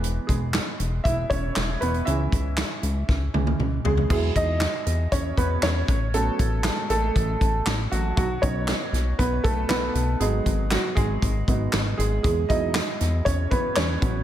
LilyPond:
<<
  \new Staff \with { instrumentName = "Upright piano" } { \time 4/4 \key e \major \tempo 4 = 118 r8 <gis gis'>4. <e' e''>8 <cis' cis''>4 <b b'>8 | <e' e''>2. r8 <gis gis'>8 | gis'8 <dis' dis''>4. <cis' cis''>8 <b b'>8 <cis' cis''>4 | <a a'>4 <gis gis'>8 <a a'>2 <fis fis'>8 |
<fis fis'>8 <cis' cis''>4. <b b'>8 <a a'>8 <b b'>4 | <gis gis'>4 <fis fis'>8 <gis gis'>2 <gis gis'>8 | <gis gis'>8 <dis' dis''>4. <cis' cis''>8 <b b'>8 <cis' cis''>4 | }
  \new Staff \with { instrumentName = "Upright piano" } { \time 4/4 \key e \major <e gis b>4 r2. | <e gis cis'>4. r4 <e gis cis'>8 r4 | <fis gis e'>8 r2. r8 | <fis b cis'>4. r2 r8 |
r8 <fis b dis'>2.~ <fis b dis'>8 | <fis b dis'>2~ <fis b dis'>8 <fis b dis'>8 r4 | r8 <fis gis e'>2. <fis b cis'>8 | }
  \new Staff \with { instrumentName = "Analog synth bass" } { \clef bass \time 4/4 \key e \major e,,8 e,,8. r16 e,,8 e,,8 e,,8 e,,8 e,,8 | cis,8 cis,8. r16 cis,8 cis,8 cis,8 cis,8 cis,8 | e,8 e,8. r16 e,8 e,8 e,8 e,8 a,,8~ | a,,8 a,,8. r16 a,,8 a,,8 a,,8 a,,8 a,,8 |
b,,8 b,,8. r16 b,,8 b,,8 b,,8 b,,8 b,,8 | gis,,8 gis,,8. r16 gis,,8 gis,,8 gis,,8 gis,,8 gis,,8 | e,8 e,8. r16 e,8 e,8 e,8 e,8 a,,8 | }
  \new DrumStaff \with { instrumentName = "Drums" } \drummode { \time 4/4 hh8 <hh bd>8 <hc hh sn>8 hh8 <hh bd>8 <hh bd>8 <hc hh sn>8 hh16 hh16 | hh8 <hh bd>8 <hc hh sn>8 hh8 <bd sn>8 tommh16 tommh16 toml8 tomfh16 tomfh16 | <cymc bd>8 <hh bd>8 <hc hh sn>8 hh8 <hh bd>8 <hh bd>8 <hc hh sn>8 <hh bd>8 | hh8 <hh bd>8 <hc hh sn>8 hh8 <hh bd>8 <hh bd>8 <hc hh sn>8 hh8 |
<hh bd>8 <hh bd>8 <hc hh sn>8 <hh sn>8 <hh bd>8 <hh bd>8 <hc hh sn>8 hh8 | hh8 <hh bd>8 <hc hh sn>8 <hh bd>8 <hh bd>8 <hh bd>8 <hc hh sn>8 hh8 | <hh bd>8 <hh bd>8 <hc hh sn>8 <hh sn>8 <hh bd>8 <hh bd>8 <hc hh sn>8 <hh bd>8 | }
>>